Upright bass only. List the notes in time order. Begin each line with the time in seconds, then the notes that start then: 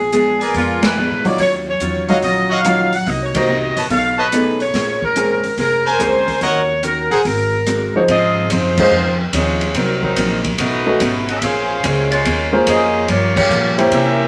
Already playing: A#1
0.55 F2
1.10 G#2
1.24 A#2
1.38 D#2
1.80 E2
2.23 A#1
3.07 C2
3.76 A#1
3.90 B1
4.74 A#1
5.44 muted upright bass stroke
5.58 F1
5.99 D2
6.41 D#2
7.11 A#1
7.25 G#1
7.94 muted upright bass stroke
8.08 G#2
8.50 F#2
8.91 F2
9.33 D#2
9.75 C2
10.16 A#1
10.58 B1
11.00 G#1
11.42 A#1
11.83 C#2
12.25 D#2
12.67 F2
13.08 G2
13.49 A#2
13.91 C3